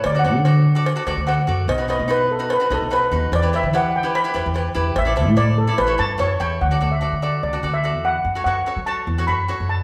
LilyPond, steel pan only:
\new Staff \with { instrumentName = "Steel pan" } { \time 4/4 \key d \major \tempo 4 = 146 << { r1 | r1 | r1 | r2 r8 a''4 g''8 |
fis''8. e''8. d''8 d''8. e''8. fis''8~ | fis''8 fis''4 a''4 b''4 a''8 | } \\ { \tuplet 3/2 { d''8 fis''4~ } fis''8 r4. fis''4 | dis''8 dis''8 b'8 a'8 b'8 a'8 b'4 | d''8 e''8 fis''8 g''8 b''4 r4 | e''4 d''8 a'8 b'4 cis''4 |
r1 | r1 | } >> }